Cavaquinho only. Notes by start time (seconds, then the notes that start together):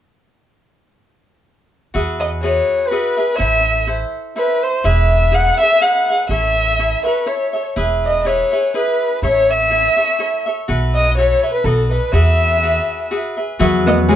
1.94 F#4 G#4 B4 E5
2.42 F#4 G#4 B4 E5
2.91 F#4 G#4 B4 E5
3.17 G#4 B4 E5
3.38 E4 A4 C5 E5
3.87 E4 A4 C5 E5
4.36 E4 A4 C5 E5
4.84 E4 G#4 B4 E5
5.32 E4 G#4 B4 E5
5.60 G#4 B4 E5
5.80 E4 G#4 B4 E5
6.09 G#4 B4 E5
6.30 E4 A4 C#5 E5
6.79 E4 A4 C#5 E5
7.04 A4 C#5 E5
7.26 E4 A4 C#5 E5
7.53 A4 C#5 E5
7.76 E4 G#4 B4 E5
8.25 E4 G#4 B4 E5
8.52 G#4 B4 E5
8.74 E4 G#4 B4 E5
9.23 E4 A4 C#5 E5
9.70 E4 A4 C#5 E5
9.96 A4 C#5 E5
10.19 E4 A4 C#5 E5
10.46 A4 C#5 E5
10.68 F#4 A4 B4 E5
11.17 F#4 A4 B4 E5
11.43 A4 B4 E5
11.65 F#4 A4 B4 D#5
11.91 A4 B4 D#5
12.13 F#4 G#4 B4 E5
12.63 F#4 G#4 B4 E5
13.11 F#4 G#4 B4 E5
13.37 G#4 B4 E5
13.59 F#4 G#4 B4 E5
14.08 F#4 G#4 B4 E5